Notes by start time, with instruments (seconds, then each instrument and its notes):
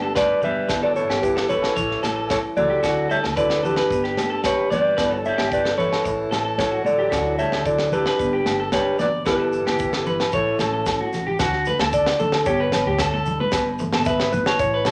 Already playing: upright bass G1, nylon-string guitar G2 D4, alto saxophone D3, clean electric guitar G4 B4
0.02 nylon-string guitar B3, clean electric guitar A4
0.15 alto saxophone G3, clean electric guitar B4 D5, kick, snare, high conga, low agogo, maracas
0.42 upright bass G1, nylon-string guitar G3 G4, alto saxophone G3, clean electric guitar B4 E5, muted clean electric guitar stroke, low conga, maracas
0.69 upright bass G1, nylon-string guitar G2 E4, muted clean electric guitar stroke, kick, snare, low agogo, maracas
0.83 alto saxophone F#3, clean electric guitar A4 B4 D5
0.96 alto saxophone E3, nylon-string guitar B3, clean electric guitar A4 C#5, maracas
1.09 upright bass G1, clean electric guitar G4, snare, low agogo
1.22 alto saxophone E3, nylon-string guitar E4, clean electric guitar G4 B4, kick, maracas
1.36 clean electric guitar A4, snare
1.49 alto saxophone E3, nylon-string guitar E3 G4, clean electric guitar A4 B4 C#5, low conga, maracas
1.62 snare, low agogo
1.76 upright bass A1, nylon-string guitar A2 E4, clean electric guitar C#5, kick, low conga, maracas
1.91 snare
2.03 upright bass A1, nylon-string guitar A3, clean electric guitar A4, snare, high conga, low agogo, maracas
2.16 clean electric guitar A4
2.29 alto saxophone E3, nylon-string guitar E4, clean electric guitar A4 C#5, kick, snare, high conga, low agogo, maracas
2.56 upright bass C#2, nylon-string guitar E3 A4, alto saxophone F#3, clean electric guitar A4 D5, high conga, low conga, maracas
2.70 clean electric guitar G4
2.83 upright bass D2, nylon-string guitar D3 E4, clean electric guitar F#4, kick, snare, low agogo, maracas
3.09 alto saxophone G3, nylon-string guitar A3, clean electric guitar A4 C#5 E5, maracas
3.23 upright bass D2, snare, high conga, low agogo
3.36 alto saxophone F#3, nylon-string guitar E4, clean electric guitar A4 B4 D5, kick, maracas
3.50 snare
3.63 alto saxophone D3, nylon-string guitar F#3 F#4, clean electric guitar G4 A4 B4, low conga, maracas
3.76 clean electric guitar B4, snare, low agogo
3.90 upright bass G1, nylon-string guitar G2 D4, kick, maracas
4.04 clean electric guitar G4, snare
4.17 upright bass G1, nylon-string guitar B3, snare, high conga, low agogo, maracas
4.30 clean electric guitar A4
4.44 alto saxophone G3, nylon-string guitar D4, clean electric guitar G4 B4 C#5, kick, snare, high conga, low agogo, maracas
4.70 upright bass G1, nylon-string guitar G3 G4, alto saxophone G3, clean electric guitar B4 D5, snare, high conga, low conga, maracas
4.97 upright bass G1, nylon-string guitar G2 E4, clean electric guitar B4, kick, snare, low agogo, maracas
5.09 alto saxophone F#3, clean electric guitar A4 C#5
5.25 alto saxophone G3, nylon-string guitar B3, clean electric guitar C#5 E5, maracas
5.38 upright bass G1, clean electric guitar G4, snare, high conga, low agogo
5.51 alto saxophone G3, nylon-string guitar E4, clean electric guitar B4 D5, kick, maracas
5.65 clean electric guitar A4, snare
5.78 nylon-string guitar E3 G4, alto saxophone E3, clean electric guitar A4 B4 C#5, low conga, maracas
5.92 snare, low agogo
6.04 upright bass A1, nylon-string guitar A2 E3 A3 E4 A4, muted clean electric guitar stroke, kick, maracas
6.31 upright bass A1, nylon-string guitar A3, clean electric guitar A4, snare, high conga, low agogo, maracas
6.45 clean electric guitar A4
6.58 alto saxophone E3, nylon-string guitar E4, clean electric guitar A4 C#5, kick, snare, high conga, low agogo, maracas
6.72 clean electric guitar F#4
6.85 upright bass A1, nylon-string guitar E3 A4, alto saxophone F#3, clean electric guitar A4 D5, high conga, maracas
6.99 clean electric guitar G4
7.11 upright bass D2, nylon-string guitar D3 C#4, clean electric guitar F#4, kick, snare, low agogo, maracas
7.26 nylon-string guitar E4
7.39 alto saxophone G3, nylon-string guitar A3, clean electric guitar A4 C#5 E5, maracas
7.52 upright bass D2, snare, low agogo
7.66 alto saxophone F#3, nylon-string guitar E4, clean electric guitar A4 D5, kick, maracas
7.78 snare
7.92 alto saxophone D3, nylon-string guitar F#3 F#4, clean electric guitar G4 A4 B4, low conga, maracas
8.06 clean electric guitar B4, snare, low agogo
8.19 upright bass G1, nylon-string guitar G2 D4, kick, maracas
8.33 clean electric guitar G4
8.46 upright bass G1, nylon-string guitar B3, snare, high conga, low agogo, maracas
8.60 clean electric guitar A4
8.72 alto saxophone G3, nylon-string guitar D4, clean electric guitar G4 B4 C#5, kick, snare, high conga, low agogo, maracas
8.99 upright bass G1, alto saxophone F#3, nylon-string guitar G3 G4, clean electric guitar B4 D5, snare, high conga, low conga, maracas
9.25 upright bass G1, nylon-string guitar G2 E3 B3 E4 G4, alto saxophone E3, clean electric guitar G4 B4, kick, snare, low agogo, maracas
9.40 clean electric guitar A4
9.53 nylon-string guitar B3, maracas
9.66 upright bass G1, clean electric guitar G4, snare, high conga, low agogo
9.79 nylon-string guitar F#2, kick, maracas
9.93 clean electric guitar A4, snare
10.06 nylon-string guitar G2, clean electric guitar B4, low conga, maracas
10.20 snare, low agogo
10.32 upright bass A1, nylon-string guitar A2 E4, alto saxophone E3, clean electric guitar A4 C#5, kick, low conga, maracas
10.59 upright bass A1, nylon-string guitar C#4, clean electric guitar A4, snare, high conga, low conga, low agogo, maracas
10.73 clean electric guitar A4
10.86 kick, snare, low agogo, maracas
11.01 clean electric guitar F#4, high conga
11.13 upright bass A1, nylon-string guitar E3 A4, snare, low conga, maracas
11.27 clean electric guitar G4, low conga
11.39 upright bass D2, nylon-string guitar D3, clean electric guitar F#4, kick, snare, low agogo, maracas
11.53 snare
11.65 nylon-string guitar A3, clean electric guitar B4, low conga, maracas
11.79 upright bass D2, clean electric guitar A4, snare, high conga, low agogo
11.93 clean electric guitar D5, kick, maracas
12.06 snare
12.18 upright bass D2, nylon-string guitar F#3, clean electric guitar A4, high conga, low conga, maracas
12.32 snare, low agogo
12.45 upright bass G1, nylon-string guitar G2, clean electric guitar G4 C#5, kick, maracas
12.60 clean electric guitar B4
12.72 upright bass G1, nylon-string guitar B3, snare, low conga, low agogo, maracas
12.85 upright bass D2, clean electric guitar G4, high conga
12.98 clean electric guitar A4, kick, snare, low agogo, maracas
13.14 clean electric guitar A4, high conga
13.26 nylon-string guitar G3, low conga, maracas
13.40 clean electric guitar B4, high conga
13.52 upright bass G1, nylon-string guitar G2, kick, snare, low agogo, maracas
13.79 nylon-string guitar A3, muted clean electric guitar stroke, low conga, maracas
13.92 upright bass G1, nylon-string guitar B3, clean electric guitar A4, snare, high conga, low agogo
14.05 clean electric guitar B4 E5, kick, maracas
14.20 snare
14.32 upright bass G1, nylon-string guitar E3, clean electric guitar B4, high conga, low conga, maracas
14.46 clean electric guitar C#5, snare, low agogo
14.59 upright bass A1, nylon-string guitar A2, clean electric guitar C#5, kick, maracas
14.74 clean electric guitar B4
14.85 upright bass A1, nylon-string guitar C#4, clean electric guitar A4, snare, low conga, low agogo, maracas